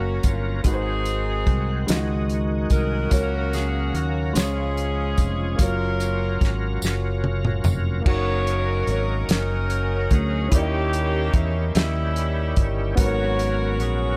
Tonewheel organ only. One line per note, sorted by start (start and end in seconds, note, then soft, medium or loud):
0.00 0.61 F#3 soft
0.00 0.61 A#3 medium
0.00 0.61 C#4 medium
0.00 0.61 A#4 medium
0.66 1.88 D#3 medium
0.66 1.88 G#3 soft
0.66 0.72 B3 soft
0.66 1.88 F#4 medium
0.72 1.92 C4 medium
1.89 3.12 D#3 medium
1.89 3.13 G#3 medium
1.89 3.12 D#4 medium
1.89 3.13 F#4 medium
3.12 4.35 F#3 medium
3.12 4.35 A#3 medium
3.12 4.36 C#4 medium
3.12 4.35 A#4 medium
4.37 5.59 F3 soft
4.37 5.59 G#3 soft
4.37 5.60 C#4 soft
4.37 5.59 G#4 medium
5.61 8.03 F#3 medium
5.61 8.03 C#4 soft
5.61 8.02 F4 medium
5.61 8.03 A#4 medium
8.06 10.49 F#3 medium
8.06 10.48 C#4 medium
8.06 10.49 D#4 medium
8.06 10.49 A#4 medium
10.53 12.95 D#3 medium
10.53 12.95 C#4 medium
10.53 12.95 E4 medium
10.53 12.95 G4 medium
12.98 14.17 F#3 medium
12.98 14.17 B3 medium
12.98 14.17 C#4 medium
12.98 14.17 A#4 medium